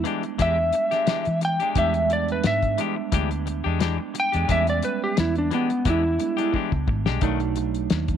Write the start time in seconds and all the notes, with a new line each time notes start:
Already playing: G3 G#3 B3 D4
0.04 E3 G#3 D4 G4, closed hi-hat
0.23 muted clean electric guitar stroke, closed hi-hat
0.38 E2 E3 G#3 D4 G4 E5, kick, closed hi-hat
0.58 muted clean electric guitar stroke
0.73 muted clean electric guitar stroke, closed hi-hat
0.91 G#3 D4 G4, snare, closed hi-hat
1.06 E3 G#3 D4 G4, snare, closed hi-hat
1.25 E3, muted clean electric guitar stroke, closed hi-hat
1.41 G5, muted clean electric guitar stroke, closed hi-hat
1.60 G#3 D4 G4, closed hi-hat
1.75 E2 E3 G3 G#3 B3 D4 G4 E5, kick, closed hi-hat
1.94 muted clean electric guitar stroke, closed hi-hat
2.10 D5, muted clean electric guitar stroke, closed hi-hat
2.28 B4, closed hi-hat
2.44 G#2 E5, muted clean electric guitar stroke, snare, closed hi-hat
2.62 kick, closed hi-hat
2.78 E3 G#3 D4 G4, closed hi-hat
2.96 muted clean electric guitar stroke
3.12 D2 E3 G#3 D4 G4, kick, closed hi-hat
3.31 muted clean electric guitar stroke, closed hi-hat
3.46 muted clean electric guitar stroke, closed hi-hat
3.64 E2 G#3 D4 G4
3.79 E3 G#3 D4 G4, snare, closed hi-hat
3.98 muted clean electric guitar stroke
4.14 muted clean electric guitar stroke, closed hi-hat
4.20 G5
4.32 E2 G#3 D4 G4, closed hi-hat
4.48 E2 E3 G3 G#3 B3 C#4 D4 G4 E5, kick, closed hi-hat
4.67 D5, muted clean electric guitar stroke, closed hi-hat
4.83 B4, muted clean electric guitar stroke, closed hi-hat
5.04 G4
5.17 E2 E4, muted clean electric guitar stroke, snare, closed hi-hat
5.36 D4, closed hi-hat
5.51 E3 G#3 B3 D4 G4, closed hi-hat
5.70 muted clean electric guitar stroke, closed hi-hat
5.85 E2 E3 G#3 D4 G4, kick, closed hi-hat
5.90 E4
6.03 muted clean electric guitar stroke
6.19 G3 G#3 B3 D4, muted clean electric guitar stroke, closed hi-hat
6.37 G#3 D4 G4, closed hi-hat
6.53 E3 G#3 D4 G4, kick
6.72 C#2, muted clean electric guitar stroke, kick
6.88 G#1, muted clean electric guitar stroke, kick
7.06 B1 G#3 D4 G4, snare
7.21 B1 B2 D#3 F#3 A3 D4 D#4, kick, closed hi-hat
7.40 muted clean electric guitar stroke, closed hi-hat
7.56 muted clean electric guitar stroke, closed hi-hat
7.74 closed hi-hat
7.90 D#2, muted clean electric guitar stroke, snare, closed hi-hat
8.08 kick, closed hi-hat